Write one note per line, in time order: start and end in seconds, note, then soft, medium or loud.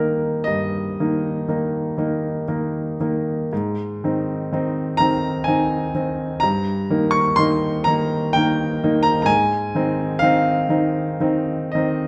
0.00 1.00 D#3 soft
0.00 1.00 A#3 soft
0.00 1.01 D#4 soft
0.00 0.46 A#4 medium
0.00 3.54 C5 medium
0.44 0.97 G2 soft
0.44 2.98 D#5 medium
1.00 1.45 D#3 soft
1.00 1.45 A#3 soft
1.00 1.45 D#4 soft
1.48 1.93 D#3 soft
1.48 1.93 A#3 soft
1.48 1.94 D#4 soft
1.97 2.43 D#3 soft
1.97 2.44 A#3 soft
1.97 2.44 D#4 soft
2.48 2.96 D#3 soft
2.48 2.96 A#3 soft
2.48 2.96 D#4 soft
3.00 3.48 D#3 soft
3.00 3.48 A#3 soft
3.00 3.48 D#4 soft
3.53 4.01 G#2 medium
4.04 4.48 D#3 soft
4.04 4.48 C4 soft
4.04 4.49 D#4 soft
4.52 4.96 D#3 soft
4.52 4.96 C4 soft
4.52 4.96 D#4 medium
4.97 5.43 D#3 soft
4.97 5.43 C4 soft
4.97 5.43 D#4 soft
4.97 5.46 A#5 loud
5.44 5.91 D#3 soft
5.44 5.91 C4 soft
5.44 5.91 D#4 soft
5.44 6.41 G#5 medium
5.95 6.39 D#3 soft
5.95 6.39 C4 soft
5.95 6.39 D#4 soft
6.40 6.90 G2 medium
6.40 7.13 A#5 medium
6.90 7.35 D#3 soft
6.90 7.35 A#3 soft
6.90 7.35 D#4 soft
7.11 7.37 C#6 medium
7.36 7.83 D#3 soft
7.36 7.84 A#3 soft
7.36 7.84 D#4 medium
7.36 7.86 C6 medium
7.84 8.31 D#3 soft
7.84 8.32 A#3 soft
7.84 8.32 D#4 medium
7.84 8.34 A#5 medium
8.33 8.79 D#3 soft
8.33 8.80 A#3 medium
8.33 8.80 D#4 medium
8.33 9.05 G5 medium
8.84 9.26 D#3 soft
8.84 9.26 A#3 soft
8.84 9.27 D#4 medium
9.03 9.21 A#5 medium
9.22 9.72 G#2 medium
9.22 10.21 G#5 medium
9.22 9.29 A#5 medium
9.75 10.18 D#3 soft
9.75 10.19 C4 soft
9.75 10.19 D#4 medium
10.19 10.66 D#3 medium
10.19 10.66 C4 medium
10.19 10.67 D#4 medium
10.19 11.73 F5 medium
10.69 11.17 D#3 medium
10.69 11.17 C4 soft
10.69 11.17 D#4 medium
11.20 11.71 D#3 soft
11.20 11.71 C4 soft
11.20 11.71 D#4 medium
11.72 12.08 D#3 medium
11.72 12.08 C4 soft
11.72 12.08 D#4 medium
11.72 12.08 D#5 medium